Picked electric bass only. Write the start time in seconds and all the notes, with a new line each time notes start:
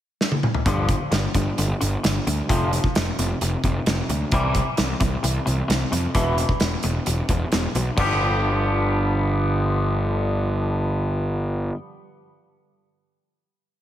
0.66 G1
1.12 G1
1.35 G1
1.59 G1
1.82 G1
2.05 G1
2.27 D2
2.50 F1
2.96 F1
3.19 F1
3.41 F1
3.64 F1
3.86 F1
4.09 D2
4.32 C2
4.79 C2
5.01 C2
5.24 C2
5.47 C2
5.69 C2
5.92 F2
6.15 E1
6.61 E1
6.84 E1
7.07 E1
7.29 E1
7.52 E1
7.75 B1
7.97 G1